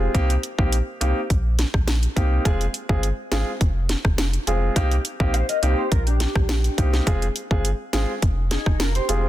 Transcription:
Already playing: grand piano G#3 C4 F4 G#4, clean electric guitar G4 C5
0.14 sub bass C2, grand piano A#3 C4 D#4 G4, kick, closed hi-hat
0.30 closed hi-hat
0.43 closed hi-hat
0.58 sub bass A#1, grand piano A#3 C4 D#4 G4, kick
0.72 closed hi-hat
1.01 sub bass C2, grand piano A#3 C4 D#4 G4, closed hi-hat
1.30 sub bass A#1, kick, closed hi-hat
1.59 snare, closed hi-hat
1.74 sub bass A#1, kick, cross-stick
1.88 snare, closed hi-hat
2.03 closed hi-hat
2.16 sub bass C2, grand piano A#3 C4 D#4 G4, kick, closed hi-hat
2.45 sub bass F1, grand piano G#3 C4 F4 G#4, kick, closed hi-hat
2.61 closed hi-hat
2.74 closed hi-hat
2.89 sub bass G1, grand piano G#3 C4 F4 G#4, kick
3.03 closed hi-hat
3.32 sub bass G#1, grand piano G#3 C4 F4 G#4, snare, closed hi-hat
3.61 sub bass F1, kick, closed hi-hat
3.89 snare, closed hi-hat
4.05 sub bass F1, kick, cross-stick
4.18 snare, closed hi-hat
4.33 closed hi-hat
4.47 sub bass F1, grand piano G#3 C4 F4 G#4, closed hi-hat
4.76 sub bass C2, grand piano A#3 C4 D#4 G4, kick, closed hi-hat
4.91 closed hi-hat
5.05 closed hi-hat
5.20 sub bass A#1, grand piano A#3 C4 D#4 G4, kick
5.34 clean electric guitar C5 F5, closed hi-hat
5.49 clean electric guitar A#4 D#5, closed hi-hat
5.62 sub bass C2, grand piano A#3 C4 D#4 G4, clean electric guitar G4 D5, closed hi-hat
5.78 clean electric guitar G4 C5
5.92 sub bass A#1, clean electric guitar F4 A#4, kick, closed hi-hat
6.07 clean electric guitar D4 G4, closed hi-hat
6.20 snare, closed hi-hat
6.36 sub bass A#1, kick, cross-stick
6.49 snare, closed hi-hat
6.64 closed hi-hat
6.78 sub bass C2, grand piano A#3 C4 D#4 G4, kick, closed hi-hat
6.93 snare
7.07 sub bass F1, grand piano G#3 C4 F4 G#4, kick, closed hi-hat
7.22 closed hi-hat
7.36 closed hi-hat
7.51 sub bass G1, grand piano G#3 C4 F4 G#4, kick
7.65 closed hi-hat
7.93 sub bass G#1, grand piano G#3 C4 F4 G#4, snare, closed hi-hat
8.22 sub bass F1, kick, closed hi-hat
8.51 clean electric guitar D#4 G#4, snare, closed hi-hat
8.66 sub bass F1, kick, cross-stick
8.80 clean electric guitar F4 A#4, snare, closed hi-hat
8.95 clean electric guitar G4 C5, closed hi-hat
9.08 sub bass F1, grand piano G#3 C4 F4 G#4, closed hi-hat

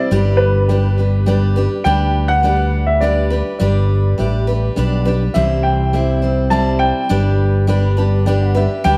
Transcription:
Already playing: steel-string acoustic guitar C4 E4 C5, upright piano D5
0.11 fretless electric bass G1, steel-string acoustic guitar G3 D4 G4 B4
0.37 upright piano B4
0.68 steel-string acoustic guitar G3 D4 G4 B4, grand piano G4 B4 D5
0.98 steel-string acoustic guitar D4 G4 B4
1.26 steel-string acoustic guitar G3 D4 G4 B4, grand piano G4 B4 D5
1.56 steel-string acoustic guitar D4 G4 B4
1.84 fretless electric bass D2, steel-string acoustic guitar G3 D4 G4 B4, upright piano G5
2.28 upright piano F#5
2.43 steel-string acoustic guitar G3 D4 G4 B4, grand piano G4 B4 D5
2.87 upright piano E5
3.01 steel-string acoustic guitar G3 D4 G4 B4, grand piano G4 B4 D5, upright piano D5
3.30 steel-string acoustic guitar D4 G4 B4
3.59 fretless electric bass G1, steel-string acoustic guitar G3 D4 G4 B4, upright piano D5
4.18 fretless electric bass A1, steel-string acoustic guitar G3 D4 G4 B4, grand piano G4 B4 E5
4.47 steel-string acoustic guitar D4 G4 B4
4.76 fretless electric bass B1, steel-string acoustic guitar G3 D4 G4 B4, grand piano G4 B4 D5
5.05 steel-string acoustic guitar D4 G4 B4
5.34 fretless electric bass C2, steel-string acoustic guitar C3 E3 G3 C4 E4 C5, upright piano E5
5.63 upright piano G5
5.93 steel-string acoustic guitar G3 C4 E4 C5, grand piano G4 C5 E5
6.22 steel-string acoustic guitar G3 C4 E4 C5
6.50 steel-string acoustic guitar G3 C4 E4 C5, grand piano G4 C5 E5, upright piano A5
6.79 upright piano G5
7.09 fretless electric bass G1, steel-string acoustic guitar G3 D4 G4 B4
7.67 steel-string acoustic guitar G3 D4 G4 B4, grand piano G4 B4 D5
7.97 steel-string acoustic guitar D4 G4 B4, grand piano A5
8.25 steel-string acoustic guitar G3 D4 G4 B4, grand piano G4 B4 D5 G5
8.42 grand piano F#5
8.55 steel-string acoustic guitar D4 G4 B4, grand piano E5
8.84 fretless electric bass D2, steel-string acoustic guitar G3 D4 G4 B4, upright piano G5

